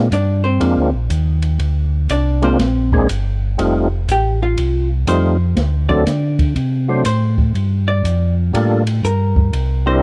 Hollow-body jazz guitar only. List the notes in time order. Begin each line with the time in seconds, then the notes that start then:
0.13 D4 D5
0.44 C4 C5
2.11 D4 D5
2.44 C4 C5
4.12 G4 G5
4.42 F4 F5
5.09 C5
5.89 D5
7.06 C5
7.88 D5
9.05 A#4
9.87 C5